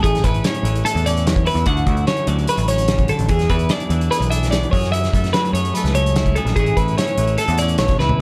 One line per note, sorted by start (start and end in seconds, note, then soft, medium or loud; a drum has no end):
0.00 0.22 A1 medium
0.00 0.46 A3 medium
0.00 0.24 G#4 medium
0.00 kick medium
0.04 1.26 A2 medium
0.04 0.86 G#4 medium
0.04 closed hi-hat medium
0.15 snare soft
0.15 closed hi-hat soft
0.24 0.42 A1 medium
0.24 1.45 E4 medium
0.24 0.45 B4 medium
0.24 kick medium
0.24 closed hi-hat medium
0.34 closed hi-hat soft
0.44 1.06 C#4 medium
0.44 0.85 C#5 medium
0.44 snare loud
0.44 closed hi-hat medium
0.55 closed hi-hat soft
0.63 0.82 A1 medium
0.63 2.27 E3 medium
0.63 closed hi-hat medium
0.76 closed hi-hat soft
0.85 1.06 A4 medium
0.85 1.65 A4 medium
0.85 closed hi-hat medium
0.95 1.48 E2 medium
0.95 closed hi-hat soft
1.06 1.65 C#4 medium
1.06 1.27 D5 medium
1.06 closed hi-hat medium
1.17 closed hi-hat soft
1.26 1.67 E2 medium
1.26 1.47 C#5 medium
1.26 snare loud
1.26 closed hi-hat medium
1.36 kick medium
1.36 closed hi-hat soft
1.46 1.70 E4 medium
1.46 1.67 B4 medium
1.46 open hi-hat medium
1.55 1.65 E2 medium
1.55 closed hi-hat soft
1.66 1.84 D2 medium
1.66 2.89 D3 medium
1.66 2.49 F#4 medium
1.66 2.07 F#5 medium
1.66 kick medium
1.66 closed hi-hat medium
1.77 closed hi-hat soft
1.86 2.04 D2 medium
1.86 3.50 E4 medium
1.86 kick medium
1.86 closed hi-hat medium
1.97 closed hi-hat soft
2.07 2.69 C#4 soft
2.07 2.28 C#5 medium
2.07 snare loud
2.07 closed hi-hat medium
2.17 closed hi-hat soft
2.27 2.45 D2 medium
2.27 3.27 F#3 medium
2.27 2.48 D5 medium
2.27 closed hi-hat medium
2.39 closed hi-hat soft
2.47 3.29 F#4 medium
2.47 2.68 B4 medium
2.47 closed hi-hat medium
2.58 3.11 A1 medium
2.58 closed hi-hat soft
2.68 3.28 C#4 soft
2.68 3.09 C#5 medium
2.68 closed hi-hat medium
2.78 closed hi-hat soft
2.88 3.09 C#3 medium
2.88 snare loud
2.88 closed hi-hat medium
2.98 kick medium
2.98 closed hi-hat soft
3.08 3.30 D3 medium
3.08 3.30 A4 medium
3.08 closed hi-hat medium
3.19 3.28 A1 medium
3.19 closed hi-hat soft
3.29 3.47 E2 medium
3.29 4.73 E2 medium
3.29 3.50 G#4 medium
3.29 4.10 G#4 medium
3.29 kick medium
3.29 closed hi-hat medium
3.39 snare soft
3.39 closed hi-hat soft
3.49 3.67 E2 medium
3.49 4.76 E4 medium
3.49 3.71 B4 medium
3.49 kick medium
3.49 closed hi-hat medium
3.59 closed hi-hat soft
3.69 4.30 D4 medium
3.69 4.11 D5 medium
3.69 snare loud
3.69 closed hi-hat medium
3.80 closed hi-hat soft
3.90 4.08 E2 medium
3.90 5.35 E3 medium
3.90 closed hi-hat medium
4.01 closed hi-hat soft
4.11 4.73 G#4 medium
4.11 4.30 B4 medium
4.11 closed hi-hat medium
4.20 4.65 B1 medium
4.20 closed hi-hat soft
4.31 4.70 D4 medium
4.31 4.51 E5 medium
4.31 closed hi-hat medium
4.43 snare soft
4.43 closed hi-hat soft
4.51 4.70 B2 medium
4.51 4.71 D5 medium
4.51 snare loud
4.51 closed hi-hat medium
4.63 closed hi-hat soft
4.71 5.08 F#2 medium
4.71 6.34 F#2 medium
4.71 5.55 G#4 medium
4.71 4.92 C#5 medium
4.71 kick medium
4.71 open hi-hat medium
4.83 snare soft
4.83 closed hi-hat soft
4.92 6.16 E4 medium
4.92 5.33 E5 medium
4.92 closed hi-hat medium
5.04 snare soft
5.04 closed hi-hat soft
5.13 5.31 F#2 medium
5.13 5.77 A3 medium
5.13 kick medium
5.13 closed hi-hat medium
5.24 snare soft
5.24 closed hi-hat soft
5.33 6.35 F#3 medium
5.33 5.53 B4 medium
5.33 snare loud
5.33 closed hi-hat medium
5.45 closed hi-hat soft
5.53 5.71 F#2 medium
5.53 6.34 G#4 medium
5.53 5.74 C#5 medium
5.53 closed hi-hat medium
5.65 closed hi-hat soft
5.74 6.59 A3 medium
5.74 5.95 B4 medium
5.74 closed hi-hat medium
5.84 6.37 C#2 medium
5.84 snare soft
5.84 closed hi-hat soft
5.95 6.34 C#3 medium
5.95 6.36 C#5 medium
5.95 closed hi-hat medium
6.06 closed hi-hat soft
6.16 6.35 E4 medium
6.16 snare loud
6.16 closed hi-hat medium
6.26 kick medium
6.26 closed hi-hat soft
6.36 6.54 F#2 medium
6.36 6.55 G#4 medium
6.36 6.55 A4 medium
6.36 closed hi-hat soft
6.45 6.55 A#1 medium
6.45 snare soft
6.45 closed hi-hat soft
6.56 6.74 A1 medium
6.56 8.21 A2 medium
6.56 7.17 E3 medium
6.56 6.97 C#4 medium
6.56 6.77 E4 medium
6.56 6.77 G#4 medium
6.56 kick loud
6.56 closed hi-hat medium
6.60 7.40 G#4 medium
6.66 closed hi-hat soft
6.77 6.95 A1 medium
6.77 8.01 E4 medium
6.77 6.97 B4 medium
6.77 kick medium
6.77 closed hi-hat medium
6.88 closed hi-hat soft
6.98 7.60 C#4 medium
6.98 7.39 C#5 medium
6.98 snare loud
6.98 closed hi-hat medium
7.07 closed hi-hat soft
7.18 7.36 A1 medium
7.18 8.21 E3 medium
7.18 closed hi-hat medium
7.27 closed hi-hat soft
7.38 7.59 A4 medium
7.38 8.19 A4 medium
7.38 closed hi-hat medium
7.48 7.75 E2 medium
7.48 closed hi-hat soft
7.58 7.78 D5 medium
7.58 closed hi-hat medium
7.62 8.20 C#4 medium
7.68 closed hi-hat soft
7.78 7.98 B1 medium
7.78 7.99 C#5 medium
7.78 snare loud
7.78 closed hi-hat medium
7.82 8.21 E2 medium
7.88 kick medium
7.88 snare soft
7.88 closed hi-hat soft
7.99 8.18 C#2 medium
7.99 8.19 E4 medium
7.99 8.21 B4 medium
7.99 snare soft
8.09 floor tom medium